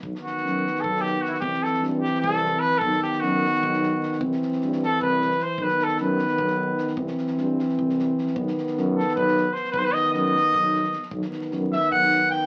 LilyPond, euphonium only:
\new Staff \with { instrumentName = "Euphonium" } { \clef bass \time 7/8 \tempo 4 = 152 dis2.~ dis8 | e2.~ e8 | dis2.~ dis8 | e2. r8 |
dis2.~ dis8 | e2.~ e8 | dis2.~ dis8 | dis2. r8 |
dis2.~ dis8 | }